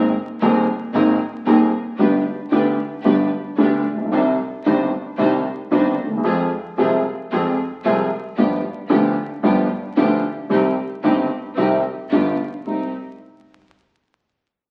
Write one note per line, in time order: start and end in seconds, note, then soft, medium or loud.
0.00 0.11 G#1 loud
0.00 0.11 G#1 medium
0.00 0.11 G#2 medium
0.00 0.11 D#3 medium
0.00 0.11 A#3 medium
0.00 0.10 C4 medium
0.00 0.11 C4 medium
0.00 0.10 G#4 medium
0.00 0.11 G#4 medium
0.00 0.10 A#4 medium
0.41 0.64 D#1 medium
0.41 0.64 D#2 medium
0.41 0.64 D#3 medium
0.41 0.64 A#3 medium
0.41 0.63 C4 medium
0.41 0.64 C4 medium
0.41 0.63 G#4 medium
0.41 0.64 G#4 medium
0.41 0.63 A#4 medium
0.93 1.16 G#1 loud
0.93 1.17 G#1 medium
0.93 1.16 G#2 medium
0.93 1.16 D#3 medium
0.93 1.17 A#3 medium
0.93 1.16 C4 medium
0.93 1.17 C4 medium
0.93 1.16 G#4 medium
0.93 1.17 G#4 medium
0.93 1.16 A#4 medium
1.45 1.69 D#1 medium
1.45 1.68 D#2 loud
1.45 1.69 D#2 medium
1.45 1.69 D#3 medium
1.45 1.69 A#3 medium
1.45 1.68 C4 medium
1.45 1.69 C4 medium
1.45 1.68 G#4 medium
1.45 1.69 G#4 medium
1.45 1.68 A#4 medium
1.98 2.21 G1 medium
1.98 2.21 G2 medium
1.98 2.21 D3 medium
1.98 2.22 G3 medium
1.98 2.21 B3 medium
1.98 2.21 D4 medium
1.98 2.21 G4 medium
1.98 2.22 G4 medium
1.98 2.21 B4 medium
2.50 2.73 D2 medium
2.50 2.74 D2 medium
2.50 2.74 D3 medium
2.50 2.74 G3 medium
2.50 2.74 B3 medium
2.50 2.74 D4 medium
2.50 2.74 G4 medium
2.50 2.75 G4 medium
2.50 2.74 B4 medium
3.04 3.27 G1 medium
3.04 3.28 G2 medium
3.04 3.28 D3 medium
3.04 3.27 G3 medium
3.04 3.28 B3 medium
3.04 3.27 D4 medium
3.04 3.27 G4 medium
3.04 3.28 G4 medium
3.04 3.27 B4 medium
3.58 3.81 D2 medium
3.58 3.81 D3 medium
3.58 3.81 G3 medium
3.58 3.81 B3 medium
3.58 3.81 D4 medium
3.58 3.81 G4 medium
3.58 3.82 G4 medium
3.58 3.82 B4 medium
3.85 4.11 A#1 medium
3.92 3.99 A1 soft
3.98 4.05 A#1 medium
4.05 4.12 B1 medium
4.11 4.34 C2 medium
4.11 4.35 C2 medium
4.11 4.35 C3 medium
4.11 4.34 D#3 medium
4.11 4.35 C4 medium
4.11 4.34 D4 medium
4.11 4.35 D4 medium
4.11 4.35 D#4 medium
4.11 4.35 G4 medium
4.11 4.35 C5 medium
4.65 4.88 G1 medium
4.65 4.89 G1 medium
4.65 4.89 G2 medium
4.65 4.88 D#3 medium
4.65 4.89 C4 medium
4.65 4.88 D4 medium
4.65 4.89 D4 medium
4.65 4.88 D#4 medium
4.65 4.89 G4 medium
4.65 4.88 C5 medium
5.18 5.41 C2 medium
5.18 5.41 C2 loud
5.18 5.41 C3 medium
5.18 5.41 D#3 medium
5.18 5.41 C4 medium
5.18 5.41 D4 medium
5.18 5.41 D#4 medium
5.18 5.41 G4 medium
5.18 5.41 C5 medium
5.71 5.94 G1 loud
5.71 5.94 G1 medium
5.71 5.94 G2 medium
5.71 5.94 D#3 medium
5.71 5.94 C4 medium
5.71 5.94 D4 medium
5.71 5.94 D#4 medium
5.71 5.95 G4 medium
5.71 5.94 C5 medium
5.99 6.24 D#2 medium
6.05 6.12 D2 soft
6.11 6.18 D#2 medium
6.17 6.25 E2 medium
6.24 6.47 F2 medium
6.24 6.47 F3 medium
6.24 6.47 G#3 medium
6.24 6.47 C4 medium
6.24 6.47 F4 medium
6.24 6.47 G#4 medium
6.77 7.00 C2 medium
6.77 7.01 C3 medium
6.77 7.00 F3 medium
6.77 7.00 G#3 medium
6.77 7.01 C4 medium
6.77 7.01 F4 medium
6.77 7.01 G#4 medium
7.31 7.54 F2 medium
7.31 7.54 F3 medium
7.31 7.54 G#3 medium
7.31 7.53 C4 medium
7.31 7.54 C4 medium
7.31 7.53 F4 medium
7.31 7.53 G#4 medium
7.31 7.55 G#4 medium
7.84 8.07 C2 loud
7.84 8.07 C2 medium
7.84 8.07 C3 medium
7.84 8.07 F3 medium
7.84 8.07 G#3 medium
7.84 8.06 C4 medium
7.84 8.07 C4 medium
7.84 8.06 F4 medium
7.84 8.06 G#4 medium
7.84 8.07 G#4 medium
8.36 8.59 G1 medium
8.36 8.60 G1 medium
8.36 8.60 G2 medium
8.36 8.60 F3 medium
8.36 8.59 B3 medium
8.36 8.60 B3 medium
8.36 8.60 D4 medium
8.36 8.59 F4 medium
8.36 8.59 G4 medium
8.36 8.60 G4 medium
8.89 9.12 D2 medium
8.89 9.13 D2 medium
8.89 9.12 D3 medium
8.89 9.12 F3 medium
8.89 9.12 B3 medium
8.89 9.13 D4 medium
8.89 9.12 F4 medium
8.89 9.12 G4 medium
9.43 9.66 G1 medium
9.43 9.66 G1 loud
9.43 9.66 G2 medium
9.43 9.65 F3 medium
9.43 9.66 B3 medium
9.43 9.66 D4 medium
9.43 9.66 F4 medium
9.43 9.66 G4 medium
9.96 10.19 D2 loud
9.96 10.19 D2 medium
9.96 10.19 D3 medium
9.96 10.19 F3 medium
9.96 10.19 B3 medium
9.96 10.19 D4 medium
9.96 10.19 F4 medium
9.96 10.19 G4 medium
10.50 10.72 C2 medium
10.50 10.72 C3 medium
10.50 10.72 D#3 medium
10.50 10.72 G3 medium
10.50 10.72 C4 medium
10.50 10.73 C4 medium
10.50 10.73 D#4 medium
10.50 10.72 G4 medium
10.50 10.73 G4 medium
11.03 11.26 G1 medium
11.03 11.26 G2 medium
11.03 11.26 D#3 medium
11.03 11.26 G3 medium
11.03 11.26 C4 medium
11.03 11.26 D#4 medium
11.03 11.26 G4 medium
11.56 11.80 C2 medium
11.56 11.80 C3 medium
11.56 11.80 D#3 medium
11.56 11.80 G3 medium
11.56 11.79 C4 medium
11.56 11.80 C4 medium
11.56 11.79 D#4 medium
11.56 11.80 G4 medium
12.09 12.34 G1 loud
12.09 12.35 G1 medium
12.09 12.35 G2 medium
12.09 12.34 D3 medium
12.09 12.34 G3 medium
12.09 12.33 B3 medium
12.09 12.35 B3 medium
12.09 12.33 F4 medium
12.09 12.35 F4 medium
12.09 12.33 G4 medium
12.64 12.87 C2 medium
12.64 12.88 C2 soft
12.64 12.88 G3 soft
12.64 12.87 C4 soft
12.64 12.88 C4 soft
12.64 12.87 D#4 soft
12.64 12.88 D#4 soft
12.64 12.87 G4 soft